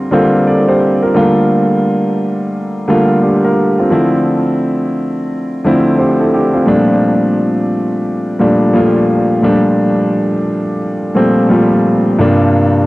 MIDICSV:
0, 0, Header, 1, 2, 480
1, 0, Start_track
1, 0, Tempo, 689655
1, 807, Time_signature, 4, 2, 24, 8
1, 8953, End_track
2, 0, Start_track
2, 0, Title_t, "Grand piano"
2, 0, Program_c, 0, 0
2, 0, Control_c, 0, 64, 127
2, 0, Note_on_c, 0, 50, 80
2, 0, Note_on_c, 0, 55, 84
2, 0, Note_on_c, 0, 58, 75
2, 0, Note_on_c, 0, 60, 75
2, 0, Note_on_c, 0, 65, 96
2, 76, Note_off_c, 0, 50, 0
2, 76, Note_on_c, 0, 50, 82
2, 80, Note_off_c, 0, 55, 0
2, 80, Note_on_c, 0, 55, 74
2, 83, Note_off_c, 0, 58, 0
2, 83, Note_on_c, 0, 58, 78
2, 86, Note_off_c, 0, 60, 0
2, 86, Note_on_c, 0, 60, 78
2, 90, Note_off_c, 0, 65, 0
2, 90, Note_on_c, 0, 65, 96
2, 263, Note_off_c, 0, 50, 0
2, 266, Note_off_c, 0, 55, 0
2, 267, Note_off_c, 0, 58, 0
2, 269, Note_off_c, 0, 60, 0
2, 271, Note_off_c, 0, 65, 0
2, 328, Note_on_c, 0, 74, 69
2, 332, Note_on_c, 0, 69, 54
2, 468, Note_off_c, 0, 74, 0
2, 471, Note_off_c, 0, 69, 0
2, 477, Note_on_c, 0, 72, 74
2, 481, Note_on_c, 0, 67, 60
2, 704, Note_off_c, 0, 72, 0
2, 707, Note_off_c, 0, 67, 0
2, 713, Note_on_c, 0, 70, 68
2, 717, Note_on_c, 0, 65, 58
2, 796, Note_on_c, 0, 50, 87
2, 800, Note_off_c, 0, 65, 0
2, 800, Note_on_c, 0, 55, 77
2, 803, Note_on_c, 0, 57, 72
2, 807, Note_on_c, 0, 58, 79
2, 810, Note_on_c, 0, 65, 93
2, 816, Control_c, 0, 64, 0
2, 927, Control_c, 0, 64, 127
2, 942, Note_off_c, 0, 70, 0
2, 1473, Note_off_c, 0, 50, 0
2, 1475, Note_off_c, 0, 55, 0
2, 1477, Note_off_c, 0, 57, 0
2, 1479, Note_off_c, 0, 58, 0
2, 1480, Note_off_c, 0, 65, 0
2, 2003, Note_on_c, 0, 50, 84
2, 2007, Note_on_c, 0, 55, 73
2, 2011, Note_on_c, 0, 57, 76
2, 2015, Note_on_c, 0, 58, 76
2, 2018, Note_on_c, 0, 65, 92
2, 2187, Note_off_c, 0, 50, 0
2, 2189, Note_off_c, 0, 55, 0
2, 2191, Note_off_c, 0, 57, 0
2, 2193, Note_off_c, 0, 58, 0
2, 2195, Note_off_c, 0, 65, 0
2, 2244, Note_on_c, 0, 67, 68
2, 2248, Note_on_c, 0, 62, 52
2, 2386, Note_off_c, 0, 67, 0
2, 2388, Note_off_c, 0, 62, 0
2, 2397, Note_on_c, 0, 70, 70
2, 2401, Note_on_c, 0, 65, 57
2, 2624, Note_off_c, 0, 70, 0
2, 2626, Note_off_c, 0, 65, 0
2, 2639, Note_on_c, 0, 65, 65
2, 2644, Note_on_c, 0, 60, 51
2, 2715, Note_on_c, 0, 50, 82
2, 2716, Note_off_c, 0, 60, 0
2, 2718, Note_on_c, 0, 53, 73
2, 2723, Note_on_c, 0, 57, 73
2, 2727, Note_on_c, 0, 60, 74
2, 2730, Note_on_c, 0, 64, 85
2, 2736, Control_c, 0, 64, 0
2, 2865, Note_off_c, 0, 65, 0
2, 2868, Control_c, 0, 64, 127
2, 3393, Note_off_c, 0, 50, 0
2, 3394, Note_off_c, 0, 53, 0
2, 3396, Note_off_c, 0, 57, 0
2, 3398, Note_off_c, 0, 60, 0
2, 3400, Note_off_c, 0, 64, 0
2, 3927, Note_on_c, 0, 50, 83
2, 3932, Note_on_c, 0, 53, 78
2, 3935, Note_on_c, 0, 57, 77
2, 3938, Note_on_c, 0, 60, 75
2, 3942, Note_on_c, 0, 64, 88
2, 4109, Note_off_c, 0, 50, 0
2, 4111, Note_off_c, 0, 53, 0
2, 4113, Note_off_c, 0, 57, 0
2, 4115, Note_off_c, 0, 60, 0
2, 4117, Note_off_c, 0, 64, 0
2, 4167, Note_on_c, 0, 72, 68
2, 4171, Note_on_c, 0, 67, 54
2, 4308, Note_off_c, 0, 72, 0
2, 4310, Note_off_c, 0, 67, 0
2, 4317, Note_on_c, 0, 69, 71
2, 4320, Note_on_c, 0, 64, 64
2, 4403, Note_off_c, 0, 69, 0
2, 4405, Note_off_c, 0, 64, 0
2, 4410, Note_on_c, 0, 67, 70
2, 4414, Note_on_c, 0, 62, 56
2, 4549, Note_on_c, 0, 65, 64
2, 4550, Note_off_c, 0, 67, 0
2, 4552, Note_off_c, 0, 62, 0
2, 4553, Note_on_c, 0, 60, 53
2, 4636, Note_on_c, 0, 46, 85
2, 4639, Note_on_c, 0, 53, 84
2, 4643, Note_on_c, 0, 55, 69
2, 4647, Note_on_c, 0, 57, 79
2, 4650, Note_on_c, 0, 62, 96
2, 4657, Control_c, 0, 64, 0
2, 4779, Control_c, 0, 64, 127
2, 4780, Note_off_c, 0, 65, 0
2, 4782, Note_off_c, 0, 60, 0
2, 5313, Note_off_c, 0, 46, 0
2, 5315, Note_off_c, 0, 53, 0
2, 5317, Note_off_c, 0, 55, 0
2, 5319, Note_off_c, 0, 57, 0
2, 5320, Note_off_c, 0, 62, 0
2, 5842, Note_on_c, 0, 46, 84
2, 5845, Note_on_c, 0, 53, 72
2, 5849, Note_on_c, 0, 55, 75
2, 5853, Note_on_c, 0, 57, 74
2, 5856, Note_on_c, 0, 62, 85
2, 6026, Note_off_c, 0, 46, 0
2, 6028, Note_off_c, 0, 53, 0
2, 6030, Note_off_c, 0, 55, 0
2, 6032, Note_off_c, 0, 57, 0
2, 6034, Note_off_c, 0, 62, 0
2, 6080, Note_on_c, 0, 46, 91
2, 6084, Note_on_c, 0, 53, 80
2, 6088, Note_on_c, 0, 55, 78
2, 6091, Note_on_c, 0, 57, 81
2, 6095, Note_on_c, 0, 65, 96
2, 6432, Note_off_c, 0, 46, 0
2, 6435, Note_off_c, 0, 53, 0
2, 6436, Note_off_c, 0, 55, 0
2, 6438, Note_off_c, 0, 57, 0
2, 6440, Note_off_c, 0, 65, 0
2, 6558, Note_on_c, 0, 46, 89
2, 6561, Note_on_c, 0, 53, 77
2, 6565, Note_on_c, 0, 55, 78
2, 6568, Note_on_c, 0, 57, 81
2, 6572, Note_on_c, 0, 62, 99
2, 7234, Note_off_c, 0, 46, 0
2, 7236, Note_off_c, 0, 53, 0
2, 7238, Note_off_c, 0, 55, 0
2, 7239, Note_off_c, 0, 57, 0
2, 7241, Note_off_c, 0, 62, 0
2, 7759, Note_on_c, 0, 46, 79
2, 7762, Note_on_c, 0, 53, 69
2, 7766, Note_on_c, 0, 55, 67
2, 7769, Note_on_c, 0, 57, 76
2, 7773, Note_on_c, 0, 60, 86
2, 7945, Note_off_c, 0, 46, 0
2, 7947, Note_off_c, 0, 53, 0
2, 7948, Note_off_c, 0, 55, 0
2, 7950, Note_off_c, 0, 57, 0
2, 7952, Note_off_c, 0, 60, 0
2, 7997, Note_on_c, 0, 46, 84
2, 8001, Note_on_c, 0, 53, 79
2, 8005, Note_on_c, 0, 55, 88
2, 8008, Note_on_c, 0, 57, 84
2, 8012, Note_on_c, 0, 65, 89
2, 8351, Note_off_c, 0, 46, 0
2, 8353, Note_off_c, 0, 53, 0
2, 8355, Note_off_c, 0, 55, 0
2, 8357, Note_off_c, 0, 57, 0
2, 8359, Note_off_c, 0, 65, 0
2, 8481, Note_on_c, 0, 43, 89
2, 8484, Note_on_c, 0, 48, 75
2, 8487, Note_on_c, 0, 53, 78
2, 8491, Note_on_c, 0, 55, 78
2, 8493, Note_on_c, 0, 58, 85
2, 8496, Note_on_c, 0, 62, 103
2, 8497, Control_c, 0, 64, 0
2, 8616, Control_c, 0, 64, 127
2, 8953, Note_off_c, 0, 43, 0
2, 8953, Note_off_c, 0, 48, 0
2, 8953, Note_off_c, 0, 53, 0
2, 8953, Note_off_c, 0, 55, 0
2, 8953, Note_off_c, 0, 58, 0
2, 8953, Note_off_c, 0, 62, 0
2, 8953, End_track
0, 0, End_of_file